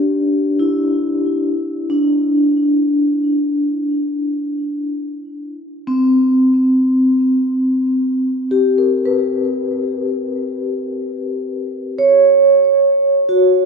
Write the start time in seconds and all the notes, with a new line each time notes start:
Already playing: G4
0.59 E4
1.90 D4
5.87 C4
8.51 G4
8.78 A#4
9.05 B4
11.98 C#5
13.29 F#4